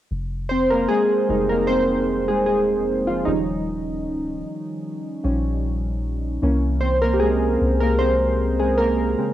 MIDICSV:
0, 0, Header, 1, 3, 480
1, 0, Start_track
1, 0, Key_signature, -4, "minor"
1, 0, Tempo, 789474
1, 65, Time_signature, 4, 2, 24, 8
1, 5676, End_track
2, 0, Start_track
2, 0, Title_t, "Synth keys"
2, 0, Program_c, 0, 88
2, 194, Control_c, 0, 64, 127
2, 299, Note_on_c, 0, 72, 92
2, 312, Note_on_c, 0, 60, 75
2, 428, Note_on_c, 0, 70, 93
2, 429, Note_off_c, 0, 60, 0
2, 436, Note_off_c, 0, 72, 0
2, 442, Note_on_c, 0, 58, 73
2, 538, Note_on_c, 0, 68, 96
2, 541, Note_off_c, 0, 58, 0
2, 545, Note_off_c, 0, 70, 0
2, 551, Note_on_c, 0, 56, 74
2, 780, Note_off_c, 0, 56, 0
2, 782, Note_on_c, 0, 55, 56
2, 787, Note_on_c, 0, 56, 49
2, 790, Note_on_c, 0, 63, 60
2, 908, Note_on_c, 0, 70, 90
2, 922, Note_off_c, 0, 68, 0
2, 922, Note_on_c, 0, 58, 71
2, 1017, Note_on_c, 0, 72, 100
2, 1021, Note_off_c, 0, 58, 0
2, 1025, Note_off_c, 0, 70, 0
2, 1030, Note_on_c, 0, 60, 77
2, 1110, Note_off_c, 0, 55, 0
2, 1113, Note_off_c, 0, 56, 0
2, 1114, Note_off_c, 0, 63, 0
2, 1373, Note_off_c, 0, 60, 0
2, 1387, Note_on_c, 0, 68, 89
2, 1401, Note_on_c, 0, 56, 69
2, 1402, Note_off_c, 0, 72, 0
2, 1489, Note_off_c, 0, 68, 0
2, 1497, Note_on_c, 0, 68, 91
2, 1501, Note_off_c, 0, 56, 0
2, 1510, Note_on_c, 0, 56, 70
2, 1853, Note_off_c, 0, 56, 0
2, 1867, Note_on_c, 0, 65, 87
2, 1881, Note_on_c, 0, 53, 66
2, 1882, Note_off_c, 0, 68, 0
2, 1974, Note_off_c, 0, 65, 0
2, 1975, Note_off_c, 0, 53, 0
2, 1977, Note_on_c, 0, 63, 76
2, 1982, Note_on_c, 0, 53, 58
2, 1985, Note_on_c, 0, 55, 50
2, 1989, Note_on_c, 0, 61, 64
2, 1990, Note_on_c, 0, 51, 63
2, 1993, Control_c, 0, 64, 0
2, 2105, Control_c, 0, 64, 127
2, 3176, Note_off_c, 0, 53, 0
2, 3179, Note_off_c, 0, 55, 0
2, 3181, Note_off_c, 0, 61, 0
2, 3184, Note_on_c, 0, 53, 52
2, 3186, Note_on_c, 0, 55, 45
2, 3188, Note_on_c, 0, 61, 58
2, 3400, Note_off_c, 0, 53, 0
2, 3402, Note_off_c, 0, 55, 0
2, 3403, Note_off_c, 0, 61, 0
2, 3637, Note_off_c, 0, 63, 0
2, 3643, Note_off_c, 0, 51, 0
2, 3904, Note_on_c, 0, 52, 55
2, 3907, Note_on_c, 0, 58, 51
2, 3911, Note_on_c, 0, 61, 64
2, 3913, Control_c, 0, 64, 0
2, 4035, Control_c, 0, 64, 127
2, 4138, Note_on_c, 0, 72, 92
2, 4152, Note_on_c, 0, 60, 76
2, 4198, Note_off_c, 0, 72, 0
2, 4209, Note_off_c, 0, 60, 0
2, 4267, Note_on_c, 0, 70, 94
2, 4273, Note_off_c, 0, 58, 0
2, 4281, Note_on_c, 0, 58, 73
2, 4338, Note_on_c, 0, 67, 66
2, 4344, Note_off_c, 0, 58, 0
2, 4344, Note_off_c, 0, 70, 0
2, 4376, Note_on_c, 0, 68, 90
2, 4381, Note_off_c, 0, 67, 0
2, 4390, Note_on_c, 0, 56, 68
2, 4733, Note_off_c, 0, 56, 0
2, 4745, Note_on_c, 0, 70, 93
2, 4760, Note_on_c, 0, 58, 72
2, 4761, Note_off_c, 0, 68, 0
2, 4852, Note_off_c, 0, 70, 0
2, 4856, Note_on_c, 0, 72, 102
2, 4860, Note_off_c, 0, 58, 0
2, 4871, Note_on_c, 0, 60, 80
2, 5214, Note_off_c, 0, 60, 0
2, 5226, Note_on_c, 0, 68, 84
2, 5240, Note_on_c, 0, 56, 64
2, 5241, Note_off_c, 0, 72, 0
2, 5336, Note_on_c, 0, 70, 91
2, 5340, Note_off_c, 0, 56, 0
2, 5344, Note_off_c, 0, 68, 0
2, 5351, Note_on_c, 0, 58, 72
2, 5560, Note_off_c, 0, 52, 0
2, 5564, Note_off_c, 0, 61, 0
2, 5581, Note_on_c, 0, 49, 57
2, 5585, Note_on_c, 0, 56, 49
2, 5588, Note_on_c, 0, 60, 62
2, 5593, Control_c, 0, 64, 0
2, 5676, Note_off_c, 0, 49, 0
2, 5676, Note_off_c, 0, 56, 0
2, 5676, Note_off_c, 0, 58, 0
2, 5676, Note_off_c, 0, 60, 0
2, 5676, Note_off_c, 0, 70, 0
2, 5676, End_track
3, 0, Start_track
3, 0, Title_t, "808-style bass"
3, 0, Program_c, 1, 38
3, 67, Note_on_c, 1, 29, 106
3, 527, Note_off_c, 1, 29, 0
3, 787, Note_on_c, 1, 29, 98
3, 1397, Note_on_c, 1, 27, 96
3, 1406, Note_off_c, 1, 29, 0
3, 1692, Note_on_c, 1, 29, 101
3, 1701, Note_off_c, 1, 27, 0
3, 1972, Note_off_c, 1, 29, 0
3, 1987, Note_on_c, 1, 27, 106
3, 2468, Note_on_c, 1, 25, 102
3, 2477, Note_off_c, 1, 27, 0
3, 2695, Note_off_c, 1, 25, 0
3, 3187, Note_on_c, 1, 34, 96
3, 3882, Note_off_c, 1, 34, 0
3, 3907, Note_on_c, 1, 36, 105
3, 4602, Note_off_c, 1, 36, 0
3, 4628, Note_on_c, 1, 36, 100
3, 5562, Note_off_c, 1, 36, 0
3, 5676, End_track
0, 0, End_of_file